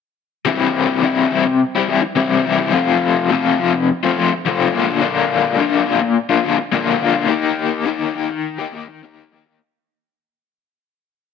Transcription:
0.45 overdriven electric guitar C3 E3 G3 C4 E4
1.02 overdriven electric guitar C3 E3 G3 C4 E4
1.31 overdriven electric guitar E3 G3 C4 E4
1.46 muted overdriven electric guitar stroke
1.76 overdriven electric guitar G3 C4 E4
1.88 overdriven electric guitar E3 G3 C4 E4
2.02 muted overdriven electric guitar stroke
2.16 overdriven electric guitar C3 E3 G3 C4 E4
2.45 overdriven electric guitar E3 G3 C4 E4
2.58 overdriven electric guitar G3 C4 E4
2.72 overdriven electric guitar F2 C3 F3 A3 C4 F4
3.30 overdriven electric guitar F2 C3 F3 A3 C4 F4
3.58 overdriven electric guitar F3 A3 C4 F4
3.74 muted overdriven electric guitar stroke
4.03 overdriven electric guitar F3 A3 C4 F4
4.17 overdriven electric guitar F3 A3 C4 F4
4.33 muted overdriven electric guitar stroke
4.45 overdriven electric guitar F2 C3 F3 A3 C4 F4
4.73 overdriven electric guitar A#2 D3 A#3 D4 F4
4.87 overdriven electric guitar A#3 D4 F4
5.01 overdriven electric guitar A#2 D3 A#3 D4 F4
5.59 overdriven electric guitar A#2 D3 A#3 D4 F4
5.87 overdriven electric guitar D3 A#3 D4 F4
6.01 muted overdriven electric guitar stroke
6.29 overdriven electric guitar A#3 D4 F4
6.43 overdriven electric guitar D3 A#3 D4 F4
6.58 muted overdriven electric guitar stroke
6.72 overdriven electric guitar A#2 D3 A#3 D4 F4
7.00 overdriven electric guitar D3 A#3 D4 F4
7.15 overdriven electric guitar A#3 D4 F4
7.28 overdriven electric guitar D#3 A#3 D#4 G4
7.85 overdriven electric guitar D#3 A#3 D#4 G4
8.14 overdriven electric guitar D#3 A#3 D#4 G4
8.30 muted overdriven electric guitar stroke
8.58 overdriven electric guitar A#3 D#4 G4
8.73 overdriven electric guitar D#3 A#3 D#4 G4
8.88 muted overdriven electric guitar stroke
9.03 overdriven electric guitar D#3 A#3 D#4 G4
9.31 overdriven electric guitar D#3 A#3 D#4 G4
9.46 overdriven electric guitar A#3 D#4 G4

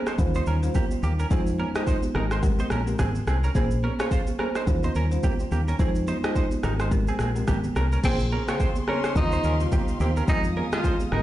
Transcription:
Already playing: marimba A#3 C#4 G#4 C5
0.07 clean electric guitar D#4 C5, cross-stick, shaker
0.18 fingered electric bass D#2, marimba G3 C#4 F4 C5, kick, low conga, shaker
0.35 clean electric guitar D#4 C5, high conga, shaker
0.46 fingered electric bass D#2, clean electric guitar C#4 A#4, shaker
0.63 marimba G3 C#4 F4 C5, shaker
0.75 clean electric guitar A#3 G4, kick, high conga, low conga, shaker
0.91 high conga, shaker
1.03 fingered electric bass D#2, clean electric guitar A#3 G4, shaker
1.19 clean electric guitar C#4 A#4, shaker
1.30 fingered electric bass F2, marimba G#3 D#4 F4 C5, clean electric guitar C4 G#4, kick, low conga, shaker
1.47 shaker
1.60 clean electric guitar C#4 A#4, high conga
1.75 marimba G#3 D#4 F4 C5, clean electric guitar G4 D#5, cross-stick, shaker
1.87 clean electric guitar D#4 C5, kick, shaker
2.03 high conga, shaker
2.15 fingered electric bass G#1, marimba G#3 C4 G4 A#4, clean electric guitar D#4 A#4, cross-stick, high conga, low conga
2.31 clean electric guitar D#4 C5, cross-stick, shaker
2.43 marimba G#3 C4 G4 A#4, kick, low conga, shaker
2.59 clean electric guitar D#4 C5, high conga, shaker
2.70 fingered electric bass A#1, clean electric guitar C#4 A#4, cross-stick, shaker
2.87 marimba G#3 C4 G4 A#4, shaker
2.99 fingered electric bass G#1, clean electric guitar C4 G#4, kick, cross-stick, high conga, low conga, shaker
3.15 high conga, shaker
3.27 fingered electric bass C2, clean electric guitar C4 G#4, cross-stick, high conga, shaker
3.44 clean electric guitar C#4 A#4, shaker
3.55 fingered electric bass A#1, marimba A#3 C#4 G#4 C5, clean electric guitar C4 G#4, kick, low conga, shaker
3.71 shaker
3.84 clean electric guitar C#4 A#4, high conga
3.99 marimba A#3 C#4 G#4 C5, clean electric guitar F4 C#5, cross-stick, shaker
4.11 clean electric guitar F4 C5, kick, shaker
4.27 high conga, shaker
4.39 marimba A#3 C#4 G#4 C5, clean electric guitar C#4 A#4, cross-stick, high conga, low conga
4.55 clean electric guitar D#4 C5, cross-stick, shaker
4.67 fingered electric bass D#2, marimba G3 C#4 F4 C5, kick, low conga, shaker
4.83 clean electric guitar D#4 C5, high conga, shaker
4.95 fingered electric bass D#2, clean electric guitar C#4 A#4, shaker
5.11 marimba G3 C#4 F4 C5, shaker
5.23 clean electric guitar A#3 G4, kick, high conga, low conga, shaker
5.39 high conga, shaker
5.51 fingered electric bass D#2, clean electric guitar A#3 G4, high conga, shaker
5.68 clean electric guitar C#4 A#4, shaker
5.79 fingered electric bass F2, marimba G#3 D#4 F4 C5, clean electric guitar C4 G#4, kick, low conga, shaker
5.95 shaker
6.07 clean electric guitar D#4 C5, high conga, shaker
6.23 marimba G#3 D#4 F4 C5, clean electric guitar G4 D#5, cross-stick, shaker
6.35 clean electric guitar D#4 C5, kick, shaker
6.51 high conga, shaker
6.63 fingered electric bass G#1, marimba G#3 C4 G4 A#4, clean electric guitar D#4 A#4, cross-stick, high conga, low conga, shaker
6.80 clean electric guitar D#4 C5, cross-stick, shaker
6.91 marimba G#3 C4 G4 A#4, kick, low conga, shaker
7.07 clean electric guitar C4 G#4, high conga, shaker
7.19 fingered electric bass A#1, clean electric guitar C4 G#4, cross-stick, shaker
7.35 marimba G#3 C4 G4 A#4, shaker
7.47 fingered electric bass G#1, clean electric guitar A#3 G4, kick, cross-stick, high conga, low conga, shaker
7.64 high conga, shaker
7.76 fingered electric bass C2, clean electric guitar C#4 A#4, cross-stick, high conga, shaker
7.92 clean electric guitar C#4 A#4, shaker
8.03 fingered electric bass A#1, marimba C#3 A#3 C4 G#4, tenor saxophone C4, clean electric guitar C4 G#4, string section G#4 C5 C6, kick, crash, low conga, shaker
8.20 shaker
8.32 clean electric guitar C#4 A#4, high conga
8.48 marimba C#3 A#3 C4 G#4, tenor saxophone C4, clean electric guitar F4 C#5, cross-stick, shaker
8.60 clean electric guitar F4 C5, kick, shaker
8.75 high conga, shaker
8.87 marimba C#3 A#3 C4 G#4, tenor saxophone C#4, clean electric guitar C#4 A#4, cross-stick, high conga, low conga
9.04 clean electric guitar D#4 C5, cross-stick, shaker
9.15 fingered electric bass D#2, marimba C#3 G3 C4 F4, tenor saxophone D#4, string section G4 F5, kick, low conga, shaker
9.32 clean electric guitar D#4 C5, high conga, shaker
9.44 fingered electric bass D#2, clean electric guitar C#4 A#4, shaker
9.60 marimba C#3 G3 C4 F4, shaker
9.72 clean electric guitar A#3 G4, kick, high conga, low conga, shaker
9.88 high conga, shaker
10.00 fingered electric bass D#2, clean electric guitar A#3 G4, tenor saxophone C4, high conga, shaker
10.17 clean electric guitar C#4 A#4, shaker
10.28 fingered electric bass F2, marimba D#3 G#3 C4 F4, clean electric guitar C4 G#4, tenor saxophone D#4, string section G#4 F5 D#6, kick, low conga, shaker
10.44 shaker
10.57 clean electric guitar C#4 A#4, high conga
10.72 marimba D#3 G#3 C4 F4, tenor saxophone F4, clean electric guitar G4 D#5, cross-stick, shaker
10.84 clean electric guitar D#4 C5, kick, shaker
11.00 high conga, shaker
11.12 fingered electric bass G#1, marimba C3 G#3 A#3 G4, tenor saxophone D#4, clean electric guitar D#4 A#4, string section A#4 G5 C6, cross-stick, high conga, low conga

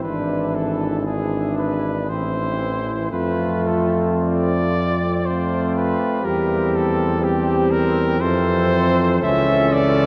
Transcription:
0.02 tuba G#1, trombone E3, trombone section D4, flugelhorn E4, cornet B4
0.55 cornet A4
1.06 trombone E3, trombone section D4, flugelhorn E4, cornet G#4
1.58 cornet B4
2.09 tuba A1, trombone E3, trombone section C4, flugelhorn E4, cornet C5
3.10 tuba F2, trombone A3, trombone section C4, flugelhorn F4, cornet B4
3.67 cornet A4
4.23 cornet D5
5.24 trombone A3, trombone section C4, flugelhorn F4, cornet C5
5.76 cornet B4
6.23 tuba E2, trombone G3, trombone section C4, flugelhorn G4, cornet A#4
6.75 cornet A4
7.21 trombone G3, trombone section C4, flugelhorn G4, cornet G4
7.71 cornet A#4
8.19 tuba F2, trombone E3, trombone section C4, flugelhorn A4, cornet C5
9.20 tuba C#2, trombone E3, trombone section C#4, flugelhorn A4, cornet E5
9.73 cornet D5

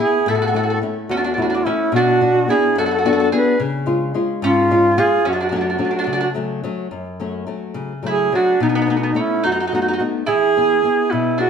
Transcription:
0.00 nylon-string guitar B3 E4 G#4, mandolin E4, duduk G#4
0.26 nylon-string guitar A2, mandolin E4, duduk A4
0.35 mandolin F#4, duduk A4
0.42 mandolin F#4, duduk A4
0.48 mandolin F#4, duduk A4
0.54 nylon-string guitar A3 C#4 E4, mandolin F#4
0.58 duduk A4
0.63 mandolin F#4, duduk A4
0.70 mandolin F#4, duduk A4
0.82 nylon-string guitar A3 C#4 E4
1.09 nylon-string guitar E2, mandolin C#4, duduk F#4
1.17 mandolin D4, duduk F#4
1.24 mandolin D4, duduk F#4
1.34 nylon-string guitar A3, mandolin D4, duduk F#4
1.38 nylon-string guitar C#4 E4, mandolin D4, duduk F#4
1.47 mandolin D4, duduk F#4
1.54 mandolin D4, duduk F#4
1.65 nylon-string guitar A3 C#4 E4, mandolin C#4, duduk E4
1.92 nylon-string guitar B2, duduk F#4
1.96 mandolin D4
2.21 nylon-string guitar B3 D4 F#4
2.48 nylon-string guitar B3 D4 F#4, mandolin E4, duduk G#4
2.76 nylon-string guitar F#2, mandolin F#4, duduk A4
2.86 mandolin F#4, duduk A4
2.91 mandolin F#4, duduk A4
2.99 mandolin F#4, duduk A4
3.05 nylon-string guitar B3 D4 F#4, mandolin F#4, duduk A4
3.13 mandolin F#4, duduk A4
3.20 mandolin F#4, duduk A4
3.32 nylon-string guitar B3 D4 F#4, mandolin G#4, duduk B4
3.60 nylon-string guitar C#3
3.86 nylon-string guitar G#3 C#4 F4
4.14 nylon-string guitar G#3 C#4 F4
4.42 nylon-string guitar G#2, mandolin C#4, duduk F4
4.71 nylon-string guitar G#3 C#4 F4
4.97 nylon-string guitar G#3 C#4 F4, mandolin F4, duduk G#4
5.25 nylon-string guitar F#2, mandolin C#4, duduk F#4
5.33 mandolin D4, duduk F#4
5.41 mandolin D4, duduk F#4
5.49 nylon-string guitar F#3 A3 C#4, mandolin D4, duduk F#4
5.56 mandolin D4, duduk F#4
5.61 mandolin D4, duduk F#4
5.70 mandolin D4, duduk F#4
5.78 nylon-string guitar F#3 A3 C#4, mandolin D4, duduk F#4
5.85 mandolin D4, duduk F#4
5.91 mandolin D4
5.95 mandolin D4, duduk F#4
6.01 mandolin D4, duduk F#4
6.07 nylon-string guitar C#3, duduk F#4
6.13 mandolin D4, duduk F#4
6.21 mandolin D4, duduk F#4
6.34 nylon-string guitar F#3 A3 C#4
6.64 nylon-string guitar F#3 A3 C#4
6.91 nylon-string guitar F#2
7.20 nylon-string guitar F#3 A3 C#4
7.47 nylon-string guitar F#3 A3 C#4
7.74 nylon-string guitar C#3
8.03 nylon-string guitar F#3 A3 C#4, mandolin E4
8.07 duduk G#4
8.32 nylon-string guitar F#3 A3 C#4, mandolin D4, duduk F#4
8.60 nylon-string guitar B2, mandolin B3, duduk D#4
8.69 mandolin B3, duduk D#4
8.75 mandolin B3, duduk D#4
8.82 mandolin B3, duduk D#4
8.87 nylon-string guitar A3 B3 D#4, mandolin B3, duduk D#4
8.97 mandolin B3, duduk D#4
9.03 mandolin B3
9.08 duduk D#4
9.14 nylon-string guitar A3 B3 D#4, mandolin C#4
9.20 duduk E4
9.44 nylon-string guitar F#2, mandolin D#4, duduk F#4
9.52 mandolin D#4, duduk F#4
9.60 mandolin D#4, duduk F#4
9.67 mandolin D#4, duduk F#4
9.72 nylon-string guitar A3 B3 D#4, mandolin D#4, duduk F#4
9.82 mandolin D#4, duduk F#4
9.88 mandolin D#4, duduk F#4
9.93 mandolin D#4, duduk F#4
10.00 nylon-string guitar A3 B3 D#4
10.27 nylon-string guitar E3, mandolin E4, duduk G#4
10.57 nylon-string guitar B3 E4 G#4
10.84 nylon-string guitar B3 E4 G#4
11.10 nylon-string guitar B2, mandolin B3, duduk E4
11.38 nylon-string guitar B3 E4 G#4, mandolin D4, duduk F#4

